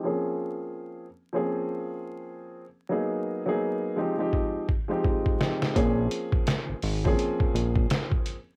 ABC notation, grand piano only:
X:1
M:4/4
L:1/16
Q:"Swing 16ths" 1/4=84
K:Bbdor
V:1 name="Grand piano"
[F,B,CDA]6 z [F,B,CDA]6- [F,B,CDA] z2 | [_G,B,_CEA]3 [G,B,CEA]3 [F,A,=CE=G] [F,A,CEG]3 z [F,A,CEG] [F,A,CEG]2 [F,A,CEG]2 | [F,B,CDA]6 z [F,B,CDA]6- [F,B,CDA] z2 |]